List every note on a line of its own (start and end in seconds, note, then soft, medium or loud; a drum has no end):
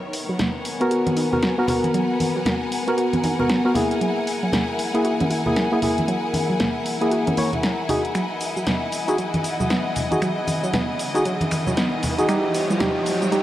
0.00 1.55 D#3 medium
0.00 3.97 B3 medium
0.00 4.01 B3 medium
0.00 3.97 A#4 medium
0.00 8.67 A#4 medium
0.00 1.43 C#5 medium
0.00 7.85 F#5 medium
0.00 6.04 G#5 medium
0.13 open hi-hat loud
0.25 12.29 F#5 medium
0.29 0.33 F#3 medium
0.39 0.48 A#3 medium
0.39 snare loud
0.39 closed hi-hat medium
0.39 low conga medium
0.59 12.29 G#5 medium
0.65 open hi-hat medium
0.80 1.29 B3 medium
0.80 1.29 F#4 medium
0.80 1.29 A#4 loud
0.80 closed hi-hat soft
0.91 0.95 F#4 medium
0.91 closed hi-hat medium
1.07 1.09 B3 medium
1.07 closed hi-hat medium
1.07 high conga medium
1.17 1.23 D#4 medium
1.17 open hi-hat loud
1.32 1.54 B3 medium
1.32 1.55 F#4 medium
1.32 1.55 A#4 medium
1.32 low conga medium
1.43 snare loud
1.43 closed hi-hat medium
1.58 1.66 B3 medium
1.58 1.66 F#4 medium
1.58 1.66 A#4 loud
1.68 2.83 B3 medium
1.68 2.84 F#4 medium
1.68 2.85 A#4 medium
1.68 open hi-hat medium
1.68 low conga medium
1.84 closed hi-hat soft
1.84 high conga medium
1.94 2.01 F#3 medium
1.94 closed hi-hat medium
2.20 open hi-hat loud
2.20 high conga medium
2.36 2.40 F#3 medium
2.45 2.55 A#3 medium
2.45 snare loud
2.45 closed hi-hat medium
2.45 low conga medium
2.72 open hi-hat medium
2.87 3.35 B3 medium
2.87 3.36 F#4 medium
2.87 3.36 A#4 loud
2.87 closed hi-hat soft
2.98 3.01 F#4 medium
2.98 closed hi-hat medium
3.13 3.16 B3 medium
3.13 closed hi-hat medium
3.13 high conga medium
3.24 3.30 D#4 medium
3.24 open hi-hat loud
3.24 high conga medium
3.39 3.61 B3 medium
3.39 3.62 F#4 medium
3.39 3.62 A#4 medium
3.39 low conga medium
3.50 snare loud
3.50 closed hi-hat medium
3.65 3.73 B3 medium
3.65 3.73 F#4 medium
3.65 3.73 A#4 loud
3.74 4.90 A#3 medium
3.74 4.91 E4 medium
3.74 4.91 G#4 medium
3.74 open hi-hat medium
3.74 low conga loud
3.91 closed hi-hat soft
4.01 13.43 E3 medium
4.01 4.07 F#3 medium
4.01 13.43 E4 medium
4.01 7.85 A#4 medium
4.01 closed hi-hat medium
4.27 open hi-hat loud
4.43 4.47 F#3 medium
4.52 4.62 A#3 medium
4.52 snare loud
4.52 closed hi-hat medium
4.52 low conga medium
4.79 open hi-hat medium
4.94 5.42 A#3 medium
4.94 5.42 E4 medium
4.94 5.43 G#4 loud
4.94 closed hi-hat soft
5.05 5.08 F#4 medium
5.05 closed hi-hat medium
5.20 5.23 C#4 medium
5.20 closed hi-hat soft
5.20 high conga loud
5.30 5.37 E4 medium
5.30 open hi-hat loud
5.46 5.68 A#3 medium
5.46 5.68 E4 medium
5.46 5.69 G#4 medium
5.46 low conga medium
5.56 snare loud
5.56 closed hi-hat medium
5.72 5.80 A#3 loud
5.72 5.80 E4 medium
5.72 5.80 G#4 loud
5.81 6.97 A#3 medium
5.81 6.98 E4 medium
5.81 6.98 G#4 medium
5.81 open hi-hat medium
5.81 low conga medium
5.98 closed hi-hat soft
5.98 high conga medium
6.08 6.14 F#3 medium
6.08 7.87 A#5 medium
6.08 closed hi-hat medium
6.33 open hi-hat loud
6.33 high conga medium
6.50 6.54 F#3 medium
6.60 6.69 A#3 medium
6.60 snare loud
6.60 closed hi-hat medium
6.60 low conga medium
6.86 open hi-hat medium
7.01 7.35 A#3 medium
7.01 7.35 E4 medium
7.01 7.36 G#4 loud
7.01 closed hi-hat soft
7.11 7.15 F#4 medium
7.11 closed hi-hat medium
7.27 7.30 C#4 medium
7.27 closed hi-hat soft
7.27 high conga loud
7.37 7.51 A#3 medium
7.37 7.44 E4 medium
7.37 7.51 E4 medium
7.37 7.51 C#5 medium
7.37 open hi-hat loud
7.37 high conga medium
7.53 closed hi-hat soft
7.53 low conga medium
7.63 snare loud
7.63 closed hi-hat medium
7.89 8.02 D#4 medium
7.89 8.03 F#4 medium
7.89 8.03 G#4 medium
7.89 13.43 D#5 medium
7.89 12.25 F#5 medium
7.89 12.25 G#5 medium
7.89 open hi-hat loud
7.89 low conga medium
8.05 closed hi-hat soft
8.13 8.21 F#3 medium
8.13 13.43 D#5 medium
8.13 finger snap medium
8.13 closed hi-hat medium
8.13 riser medium
8.13 cabasa soft
8.41 open hi-hat loud
8.41 cabasa medium
8.56 8.61 F#3 medium
8.56 cabasa soft
8.67 8.76 B3 medium
8.67 snare loud
8.67 closed hi-hat medium
8.67 low conga medium
8.67 cabasa soft
8.92 open hi-hat medium
8.92 cabasa medium
9.08 9.17 D#4 medium
9.08 9.17 F#4 medium
9.08 9.17 G#4 medium
9.08 closed hi-hat soft
9.08 cabasa soft
9.18 9.25 F#3 medium
9.18 closed hi-hat medium
9.18 cabasa soft
9.34 closed hi-hat soft
9.34 high conga medium
9.44 open hi-hat loud
9.44 cabasa medium
9.60 9.64 F#3 medium
9.60 low conga medium
9.60 cabasa soft
9.70 9.79 B3 medium
9.70 snare loud
9.70 closed hi-hat medium
9.70 cabasa soft
9.96 open hi-hat medium
9.96 low conga medium
9.96 cabasa medium
10.11 10.20 D#4 medium
10.11 10.20 F#4 medium
10.11 10.21 G#4 medium
10.11 closed hi-hat soft
10.11 high conga medium
10.11 cabasa soft
10.22 10.28 F#3 medium
10.22 finger snap medium
10.22 closed hi-hat medium
10.22 cabasa soft
10.47 open hi-hat loud
10.47 high conga medium
10.47 cabasa medium
10.63 10.67 F#3 medium
10.63 cabasa soft
10.73 10.83 B3 medium
10.73 snare loud
10.73 closed hi-hat medium
10.73 low conga medium
10.73 cabasa soft
10.99 open hi-hat medium
10.99 cabasa medium
11.14 11.23 D#4 medium
11.14 11.24 F#4 medium
11.14 11.24 G#4 medium
11.14 closed hi-hat soft
11.14 cabasa soft
11.25 11.32 F#3 medium
11.25 closed hi-hat medium
11.25 cabasa soft
11.41 closed hi-hat medium
11.41 high conga medium
11.51 finger snap medium
11.51 open hi-hat loud
11.51 high conga medium
11.51 cabasa medium
11.66 11.71 F#3 medium
11.66 low conga medium
11.66 cabasa soft
11.77 11.86 B3 medium
11.77 snare loud
11.77 closed hi-hat medium
11.77 cabasa soft
12.03 open hi-hat medium
12.03 low conga medium
12.03 cabasa medium
12.18 12.27 D#4 medium
12.18 12.27 F#4 medium
12.18 12.27 G#4 loud
12.18 closed hi-hat soft
12.18 cabasa soft
12.28 12.35 G3 medium
12.28 12.78 D#4 medium
12.28 12.78 G4 medium
12.28 13.43 C#5 medium
12.28 13.43 G5 medium
12.28 finger snap medium
12.28 closed hi-hat medium
12.28 cabasa soft
12.52 13.43 C#5 medium
12.52 open hi-hat loud
12.52 cabasa medium
12.70 12.74 G3 medium
12.70 cabasa soft
12.80 12.87 G3 medium
12.80 13.30 D#4 medium
12.80 13.30 G4 medium
12.80 13.43 G5 medium
12.80 snare loud
12.80 closed hi-hat medium
12.80 low conga medium
12.80 cabasa soft
13.06 open hi-hat medium
13.06 cabasa medium
13.22 13.26 G3 medium
13.22 closed hi-hat soft
13.22 cabasa soft
13.32 13.38 G3 medium
13.32 13.43 D#4 medium
13.32 13.43 G4 medium
13.32 closed hi-hat medium
13.32 cabasa soft